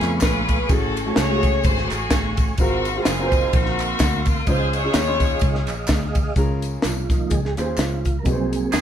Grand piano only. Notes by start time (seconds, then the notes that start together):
Already playing: C#3 A3 B3 C#4 F4
0.68 A2 A3 C#4 F#4 G#4
1.06 A3 C#4 F#4 A4
1.29 A3 C#4 F#4 G#4
1.36 G#4
2.60 G#2 C4 F4 F#4 A#4
2.96 C4 F4 F#4 G#4
3.20 C4 F4 F#4 A#4
3.27 C5
4.48 C#3 C#4 D#4 F4 C5
4.83 C#4 D#4 F4 G#4
5.07 C#4 D#4 F4 C6
6.36 C#3 C#4 F4 G#4 A#4
7.57 C#4 F4 G#4 C5
8.25 C3 D#4 F#4 G#4 B4
8.32 C5